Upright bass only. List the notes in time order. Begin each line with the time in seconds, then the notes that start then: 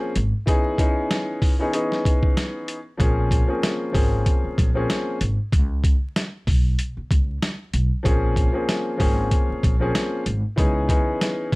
0.16 G#1
3.00 A#1
3.95 G#1
4.44 muted upright bass stroke
4.58 A#1
5.21 G#1
5.53 C#2
6.47 B1
6.97 muted upright bass stroke
7.11 C#2
7.74 B1
8.05 A#1
9.00 G#1
9.50 muted upright bass stroke
9.63 A#1
10.26 G#1
10.58 C#2